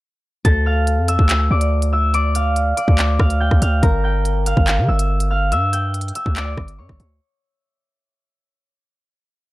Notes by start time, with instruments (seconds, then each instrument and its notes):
0.45 808-style bass D2, harp A4 A5, kick, closed hi-hat
0.66 harp F5 F6
0.87 closed hi-hat
0.98 808-style bass F2
1.08 harp E5 E6, closed hi-hat
1.19 808-style bass D2, kick
1.29 clap, closed hi-hat
1.51 808-style bass D2, harp D5 D6
1.61 closed hi-hat
1.82 closed hi-hat
1.93 harp E5 E6
2.14 harp D5 D6, closed hi-hat
2.35 harp F5 F6, closed hi-hat
2.56 closed hi-hat
2.77 harp D5 D6, closed hi-hat
2.88 808-style bass D2, kick
2.98 clap, closed hi-hat
3.19 808-style bass D2, harp F5 F6, kick, cross-stick
3.30 closed hi-hat
3.40 harp G5 G6
3.51 808-style bass D2, kick, cross-stick
3.62 808-style bass D2, harp F5 F6, closed hi-hat
3.83 808-style bass G1, harp A#4 A#5, kick, closed hi-hat
4.04 harp G5 G6
4.25 closed hi-hat
4.46 harp F5 F6, closed hi-hat
4.57 808-style bass G1, kick
4.67 clap, closed hi-hat
4.78 808-style bass D3
4.88 808-style bass G1, harp E5 E6
4.99 closed hi-hat
5.20 closed hi-hat
5.31 harp F5 F6
5.52 808-style bass G2, harp E5 E6, closed hi-hat
5.73 harp G5 G6, closed hi-hat
5.94 closed hi-hat
6.01 closed hi-hat
6.08 closed hi-hat
6.15 harp E5 E6, closed hi-hat
6.26 808-style bass D2, kick
6.36 harp D5 D6, clap, closed hi-hat
6.57 808-style bass G1, kick, cross-stick
6.68 closed hi-hat
6.79 808-style bass G2, harp C#5 C#6
6.89 808-style bass G1, kick, cross-stick
7.00 808-style bass D2, closed hi-hat